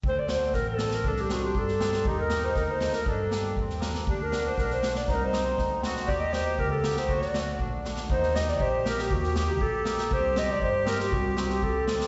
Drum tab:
SD |--o-o-oo|-oo--ooo|--o-o-oo|--o--ooo|
BD |o---o---|o---o---|o---o---|o---o---|

SD |--o-oooo|o-o-o-oo|o-o---oo|-oo---oo|
BD |o---o---|o---o---|o---o---|o---o---|

SD |-ooo--oo|-oo---oo|--o---oo|--oo--oo|
BD |o---o---|o---o---|o---o---|o---o---|